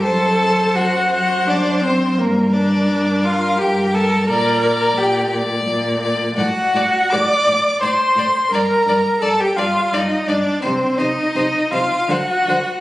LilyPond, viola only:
\new Staff \with { instrumentName = "Viola" } { \time 3/4 \key g \minor \tempo 4 = 85 a'4 fis'8 fis'8 d'8 c'8 | bes8 d'4 f'8 g'8 a'8 | bes'4 g'8 r4. | fis'4 d''4 c''4 |
bes'4 a'16 g'16 f'8 ees'8 d'8 | c'8 ees'4 f'8 fis'4 | }